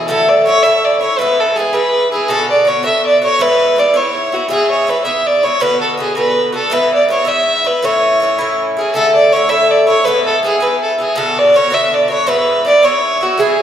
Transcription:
Already playing: B2 E3
0.08 A2 D3 A3 E4 A4
0.29 D5
0.45 A2 D3 A3 E4 C#5
0.63 A2 D3 A3 E4 E5
0.84 D5
1.01 D3 A3 E4 C#5
1.18 G#2 E3 B3 E4 B4
1.39 A4
1.55 G#2 E3 B3 G#4
1.60 E4
1.73 G#2 E3 B3 E4 B4
2.12 E3 B3 E4 G#4
2.28 B2 D3 B3 F#4 A4
2.50 D5
2.65 B2 D3 B3 F#4 C#5
2.83 B2 D3 B3 F#4 E5
3.06 D5
3.22 D3 B3 F#4 C#5
3.39 G#2 E3 B3 E4 B4
3.76 G#2 E3 B3 E4 D5
3.94 G#2 E3 B3 E4 C#5
4.32 E3 B3 E4 F#4
4.49 G#2 E3 B3 E4 G#4
4.70 C#5
4.87 G#2 E3 B3 E4 B4
5.05 G#2 E3 B3 E4 E5
5.27 D5
5.43 E3 B3 E4 C#5
5.60 B2 D3 B3 F#4 B4
5.81 A4
5.97 B2 D3 B3 F#4 G#4
6.15 B2 D3 B3 F#4 B4
6.52 D3 B3 F#4 A4
6.70 G#2 E3 B3 E4 B4
6.94 D5
7.09 G#2 E3 B3 E4 C#5
7.25 G#2 E3 B3 E4 E5
7.65 E3 B3 E4 B4
7.83 A2 E3 C#4 E4 C#5
8.20 A2 E3 C#4
8.24 E4
8.39 A2 E3 C#4 E4
8.77 E3 C#4 E4 G#4
8.94 A2 D3 A3 E4 A4
9.15 D5
9.32 A2 D3 A3 E4 C#5
9.49 A2 D3 A3 E4 E5
9.70 D5
9.87 D3 A3 E4 C#5
10.04 G#2 E3 B3 E4 B4
10.26 A4
10.43 G#2 E3 B3 E4 G#4
10.60 G#2 E3 B3 E4 B4
10.82 A4
10.98 E3 B3 E4 G#4
11.16 B2 D3 B3 F#4 A4
11.38 D5
11.54 B2 D3 B3 F#4 C#5
11.70 B2 D3 B3 F#4 E5
11.94 D5
12.08 D3 B3 F#4 C#5
12.27 G#2 E3 B3 E4 B4
12.65 G#2 E3 B3 E4 D5
12.83 G#2 E3 B3 E4 C#5
13.21 E3 B3 E4 F#4
13.38 G#2 E3 B3 E4 G#4

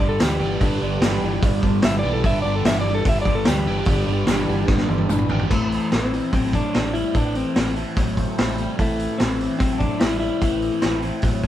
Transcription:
Already playing: G1 G2 D3 G3 B3 D4 G4 D5
0.00 G2 D3 G3 D4 G4 B4
0.09 A4
0.19 D2 G2 E3 G3 D4 G4 B4, snare, open hi-hat, tambourine
0.41 G1 G2 D3 E3 G3 B3 D4 G4
0.50 D4 G4 B4
0.60 G1 G2 D3 G3 B3 D4 G4 B4, kick, open hi-hat
0.81 G1 G2 D3 G3 D4 G4 B4
1.01 G1 G2 E3 G3 D4 G4 B4, snare, open hi-hat, tambourine
1.22 G1 G2 E3 G3 D4 G4 B4
1.34 D4 G4 B4
1.42 G1 G2 D3 G3 D4 G4, kick, open hi-hat
1.47 B4
1.54 D4 G4 B4
1.63 G1 G2 D3 G3 D4, kick
1.68 G4 B4
1.82 G1 G2 E3 G3 E5, snare, open hi-hat, tambourine
1.86 G2 D4 G4 B4
1.99 D5
2.03 B1 G2 D3 E3 G3 B3 D4 G4
2.13 A4 B4
2.18 D4 G4
2.23 G1 G2 D3 G3 B3 D4 G4 D5 E5, kick, open hi-hat
2.28 B4
2.42 G1 G2 G3 D4 D5
2.46 D3 G4 B4
2.55 A4
2.65 G1 G2 E3 G3 D4 G4 B4 E5, snare, open hi-hat, tambourine
2.81 D5
2.87 G2 E3 G3 D4 G4 B4
2.95 A4 B4
2.99 D4 G4
3.05 G1 G2 D3 G3, kick, open hi-hat
3.09 D4 G4 B4 E5
3.18 D4 G4 B4 D5
3.25 G2 D3 G3 D4, kick
3.30 G4 B4
3.35 A4
3.45 D2 G2 E3 G3, snare, open hi-hat, tambourine
3.49 D4 G4 B4
3.67 G1 G2 D3 E3 G3 B3 D4 G4
3.78 D4 G4 B4
3.85 G1 G2 D3 G3 B3, kick, open hi-hat
3.89 D4 G4 B4
4.08 G1 G2 D3 G3 D4
4.12 G4 B4
4.27 G1 G2 E3 G3 D4 G4 B4, snare, open hi-hat, tambourine
4.48 G1 G2 E3 G3 D4
4.53 G4 B4
4.60 D4 G4 B4
4.68 G1 G2 D3 G3, kick, snare
4.73 D4 G4 B4
4.77 snare
4.82 D4 G4 B4
4.88 G1 G2 D3 G3 D4, high tom
4.93 G4 B4
4.98 high tom
5.09 G1 G2 E3 G3 D4 G4 B4, mid tom, tambourine
5.19 mid tom
5.29 G#1 G2 D3 E3 G3 B3 D4 G4, floor tom
5.39 G4 B4, floor tom
5.44 D4
5.50 A1 A2 E3 A3 C4 E4 C5, kick, crash
5.54 C4 E4 A4
5.72 open hi-hat
5.83 A3 C4 E4 A4
5.92 A1 A2 E3 A3 C4 E4 A4, snare, open hi-hat
6.13 A2 E3 A3 C4 E4 A4, open hi-hat
6.33 A1 A2 F#3 C4, kick, open hi-hat
6.45 C4 E4 A4
6.49 A3
6.53 D4, kick, open hi-hat
6.64 A3 C4 E4 A4
6.73 A1 A2 E3 G3 A3 C4 E4, snare, open hi-hat
6.77 A4
6.93 A2 G3 A3 C4 E4 A4, open hi-hat
7.03 A3 C4 E4 A4
7.15 A1 A2 E3 A3 C4 D4 E4 A4, kick, open hi-hat
7.35 C4, open hi-hat
7.43 A3 C4 E4 A4
7.54 A1 A2 E3 A3 C4 E4 A4, snare, open hi-hat
7.75 A2 E3 A3 C4 E4, open hi-hat
7.79 A4
7.96 A1 A2 F#3 A3 C4 E4 A4, kick, open hi-hat
8.07 A3 C4 E4 A4
8.17 kick, open hi-hat
8.28 A3 C4 E4 A4
8.38 A1 A2 E3 G3 A3 C4 A4, snare, open hi-hat
8.42 E4
8.58 A2 G3 A3 C4 E4, open hi-hat
8.63 A4
8.70 A3 C4 E4 A4
8.78 A1 A2 E3 A3 C4 E4 C5, kick, open hi-hat
8.82 A4
8.99 open hi-hat
9.12 A3 C4 E4 A4
9.19 A1 A2 E3 A3 C4 A4, snare, open hi-hat
9.24 E4
9.40 A2 E3 A3 C4 E4, open hi-hat
9.45 A4
9.59 A1 A2 F#3 C4, kick, open hi-hat
9.71 A3 C4 E4 A4
9.79 D4, kick, open hi-hat
9.90 A3 C4 E4 A4
10.00 A1 A2 E3 G3 A3 C4 E4 A4, snare, open hi-hat
10.20 A2 G3 A3 C4 E4, open hi-hat
10.24 A4
10.30 A3 C4 E4 A4
10.40 A1 A2 E3 A3 C4 E4 A4, kick, open hi-hat
10.62 open hi-hat
10.71 A3 C4 E4 A4
10.80 A1 A2 E3 A3 C4 E4 A4, snare, open hi-hat
11.02 A2 E3 A3 C4 E4 A4, open hi-hat
11.22 A1 A2 F#3 A3 C4 E4 A4, kick, open hi-hat
11.32 A3 C4 E4 A4
11.43 kick, open hi-hat

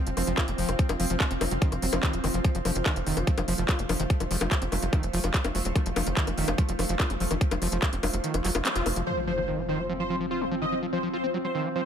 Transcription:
Already playing: F3 C4 F4 C5 F5
0.07 F1 F3, closed hi-hat
0.17 F1 F3, open hi-hat, high bongo
0.27 F1 F3, closed hi-hat
0.38 F4, kick, clap, closed hi-hat, high bongo
0.48 F1 F3, closed hi-hat
0.58 F1 F3, open hi-hat
0.69 F1 F#3, closed hi-hat, high bongo
0.79 F3, kick, closed hi-hat
0.89 F1 F3, closed hi-hat, high bongo
1.00 F1 F3, open hi-hat
1.10 F1 F3, closed hi-hat
1.20 F4, kick, clap, closed hi-hat, high bongo
1.31 F1 C4, closed hi-hat
1.41 F1 F#3, open hi-hat, high bongo
1.51 F1 F#3, closed hi-hat
1.62 D#3, kick, closed hi-hat
1.72 F1 F3, closed hi-hat, high bongo
1.82 F1 F#3, open hi-hat
1.93 F1 F3, closed hi-hat, high bongo
2.03 D#3, kick, clap, closed hi-hat
2.13 D#1 F#3, closed hi-hat
2.24 F1 D#3, open hi-hat, high bongo
2.34 F1 F3, closed hi-hat
2.44 F3 A3, kick, closed hi-hat
2.55 F1 F3, closed hi-hat
2.65 F1 F3, open hi-hat, high bongo
2.75 F1 D#3, closed hi-hat
2.86 D#3, kick, clap, closed hi-hat, high bongo
2.96 F1 F3, closed hi-hat
3.07 F1 D#3, open hi-hat
3.17 F1 F#3, closed hi-hat, high bongo
3.27 F3, kick, closed hi-hat
3.38 F1 F3, closed hi-hat, high bongo
3.48 F1 F3, open hi-hat
3.58 F1 F3, closed hi-hat
3.69 F4, kick, clap, closed hi-hat, high bongo
3.79 F1 F3, closed hi-hat
3.89 F1 F3, open hi-hat, high bongo
4.00 F1 D#3, closed hi-hat
4.10 F3, kick, closed hi-hat
4.20 F1 F3, closed hi-hat, high bongo
4.31 F1 F3, open hi-hat
4.41 F1 F3, closed hi-hat, high bongo
4.51 F4, kick, clap, closed hi-hat
4.62 F1 C4, closed hi-hat
4.72 F1 F#3, open hi-hat, high bongo
4.82 F1 F#3, closed hi-hat
4.93 D#3, kick, closed hi-hat, high bongo
5.03 F1 F3, closed hi-hat
5.13 F1 F3, open hi-hat
5.24 F1 F3, closed hi-hat, high bongo
5.34 F4, kick, clap, closed hi-hat
5.44 F1 C4, closed hi-hat, high bongo
5.55 F1 F#3, open hi-hat
5.65 D#1 F#3, closed hi-hat
5.75 F3, kick, closed hi-hat, high bongo
5.86 F1 F3, closed hi-hat
5.96 F1 F3, open hi-hat, high bongo
6.07 F1 D#3, closed hi-hat
6.17 D#3, kick, clap, closed hi-hat
6.27 F1 F3, closed hi-hat, high bongo
6.38 F1 D#3, open hi-hat
6.48 F1 F#3, closed hi-hat, high bongo
6.58 F3, kick, closed hi-hat
6.69 F1 F3, closed hi-hat
6.79 F1 F3, open hi-hat, high bongo
6.89 F1 F3, closed hi-hat
7.00 F4, kick, clap, closed hi-hat, high bongo
7.10 F1 F3, closed hi-hat
7.20 F1 F3, open hi-hat
7.31 F1 D#3, closed hi-hat, high bongo
7.41 F3, kick, closed hi-hat
7.51 F1 F3, closed hi-hat, high bongo
7.62 F1 F3, open hi-hat
7.72 F1 F3, closed hi-hat
7.82 F4, kick, clap, closed hi-hat, high bongo
7.93 F1 C4, closed hi-hat
8.03 F1 F#3, open hi-hat, high bongo
8.13 F1 F#3, closed hi-hat
8.24 D#3, closed hi-hat
8.34 F1 F3, closed hi-hat, high bongo
8.44 F1 F#3, clap, open hi-hat
8.55 F1 F4, closed hi-hat, high bongo
8.65 C4, clap, closed hi-hat
8.76 F1 F4, closed hi-hat
8.86 F1 F#3, open hi-hat, high bongo
8.96 F1 F3, closed hi-hat
9.07 F3 C4 F4 C5, impact
9.17 F3
9.27 F3 C5
9.34 D#3 F5
9.48 D#3
9.58 F3
9.69 D#3 C5
9.79 F#3
9.89 F3
10.00 F3 C5
10.10 F3
10.20 F3
10.31 F4 C5
10.41 F3
10.51 F3
10.62 D#3 D#5
10.72 F3
10.82 F3
10.93 F3 C5
11.03 F3
11.13 F4 C5
11.24 C4
11.34 F#3
11.44 F#3 C5
11.55 D#3
11.65 F3
11.75 F3 C5

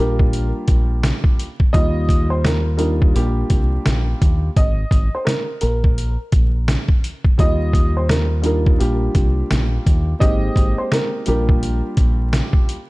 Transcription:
Already playing: G3 A#3 D4 F4
0.00 A#1 G4 A#4
0.19 kick
0.33 closed hi-hat
0.68 A#1, kick, closed hi-hat
1.03 snare, closed hi-hat
1.24 kick
1.39 closed hi-hat
1.60 kick
1.73 D#2 G3 A#3 D#4 F4 D#5, kick, closed hi-hat
2.09 kick, closed hi-hat
2.30 C5
2.44 A#4, snare, closed hi-hat
2.77 G3 A#3 D4 D#4 F4 A#4, closed hi-hat
3.02 kick
3.14 A#1 G3 A#3 D4 F4 G4, closed hi-hat
3.50 C2, kick, closed hi-hat
3.86 A#1, snare, closed hi-hat
4.22 D#2, kick, closed hi-hat
4.56 G#1 D#5, kick, closed hi-hat
4.91 G#1, kick, closed hi-hat
5.15 C5
5.25 A#4, snare, closed hi-hat
5.61 A#1 A#4, closed hi-hat
5.84 kick
5.98 closed hi-hat
6.32 A#1, kick, closed hi-hat
6.68 snare, closed hi-hat
6.88 kick
7.04 closed hi-hat
7.25 kick
7.38 D#2 G3 A#3 D#4 F4 D#5, kick, closed hi-hat
7.73 kick, closed hi-hat
7.97 C5
8.09 A#4, snare, closed hi-hat
8.42 G3 A#3 D4 D#4 F4, closed hi-hat
8.46 A#4
8.66 kick
8.78 A#1 G3 A#3 D4 F4 G4, closed hi-hat
9.15 C2, kick, closed hi-hat
9.51 A#1, snare, closed hi-hat
9.86 D#2, kick, closed hi-hat
10.19 G#1 G#3 A#3 C4 D#4 G4 D#5, kick, closed hi-hat
10.56 G#1, kick, closed hi-hat
10.78 C5
10.92 A#4, snare, closed hi-hat
11.26 A#1 G3 A#3 D4 F4 G4 A#4, closed hi-hat
11.49 kick
11.63 closed hi-hat
11.97 A#1, kick, closed hi-hat
12.33 snare, closed hi-hat
12.53 kick
12.69 closed hi-hat

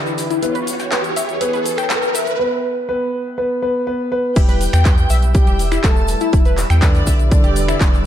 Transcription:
Already playing: D3 E3 D4 E4 G4 B4, riser
0.06 snare, shaker
0.18 snare, closed hi-hat, open hi-hat, shaker
0.30 E4, closed hi-hat, shaker
0.42 B3 E4 B4 C#5, closed hi-hat, shaker
0.55 B4, closed hi-hat, shaker
0.67 closed hi-hat, open hi-hat, shaker
0.79 G5, snare, closed hi-hat, shaker
0.91 B4, snare, clap, closed hi-hat, shaker
1.04 closed hi-hat, shaker
1.16 E5, closed hi-hat, open hi-hat, shaker
1.29 closed hi-hat, shaker
1.41 B3 E4 B4, closed hi-hat, shaker
1.53 B4, closed hi-hat, shaker
1.66 closed hi-hat, open hi-hat, shaker
1.78 G5, finger snap, snare, closed hi-hat, shaker
1.90 B4, snare, clap, closed hi-hat, shaker
2.02 shaker
2.15 E5, closed hi-hat, open hi-hat, shaker
2.27 closed hi-hat, shaker
2.39 B3 B4
2.89 B3 B4
3.38 B3 B4
3.62 B3 B4
3.87 B3 B4
4.12 B3 B4
4.36 E1 G3 E4 G4 B4 E5 G5 E6, kick, closed hi-hat, crash, shaker
4.49 B4, closed hi-hat, shaker
4.61 closed hi-hat, open hi-hat, shaker
4.73 E2 G5, finger snap, snare, closed hi-hat, shaker
4.85 B4, kick, snare, clap, closed hi-hat, shaker
4.98 closed hi-hat, shaker
5.09 B1 E5, closed hi-hat, open hi-hat, shaker
5.22 closed hi-hat, shaker
5.35 G3 G4 G5, kick, closed hi-hat, shaker
5.47 E1 G4, closed hi-hat, shaker
5.59 closed hi-hat, open hi-hat, shaker
5.72 E4, finger snap, snare, closed hi-hat, shaker
5.84 E1 A3 A4 A5, kick, snare, clap, closed hi-hat, shaker
5.96 shaker
6.08 closed hi-hat, open hi-hat, shaker
6.20 E4, closed hi-hat, shaker
6.32 E1 E4, kick, closed hi-hat, shaker
6.45 B4, closed hi-hat, shaker
6.57 clap, closed hi-hat, open hi-hat, shaker
6.70 E2 G5, finger snap, snare, closed hi-hat, shaker
6.81 D3 D4 B4 D5, kick, snare, clap, closed hi-hat, shaker
6.95 snare, closed hi-hat, shaker
7.07 B1 E5, kick, closed hi-hat, open hi-hat, shaker
7.19 closed hi-hat, shaker
7.31 D3 D4 D5, kick, closed hi-hat, shaker
7.44 E1 G4, closed hi-hat, shaker
7.56 closed hi-hat, open hi-hat, shaker
7.68 E4, finger snap, closed hi-hat, shaker
7.80 E1, kick, snare, clap, closed hi-hat, shaker
7.93 snare, shaker

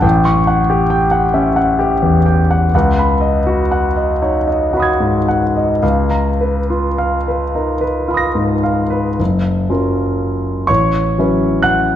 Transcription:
0.02 A1 G5
0.25 C#6
0.47 F#5
0.70 G4
0.90 G5
1.11 F#5
1.34 C#4 E5
1.56 F#5
1.79 G4
2.02 E2
2.26 G5
2.51 F#5
2.74 C#2 F#5
2.99 B5
3.21 D#5
3.47 F#4
3.72 F#5
3.96 D#5
4.22 D#4 C#5
4.47 D#5
4.73 F#4 F#5 B5
4.80 D#6 G#6
5.00 G#2
5.28 F#5
5.57 D#5
5.83 C#2 F5
6.10 A#5
6.41 B4
6.70 F4
6.98 F5
7.28 B4
7.55 D#4 A#4
7.81 B4
8.08 F4 F5 B5
8.14 D#6 A#6
8.35 G#2
8.63 F5
8.90 B4
9.19 F#1
9.69 F#3 C#4 F4 A#4
10.67 A1 C#5 C#6
11.18 F#3 C#4 E4 B4
11.62 F#5 F#6

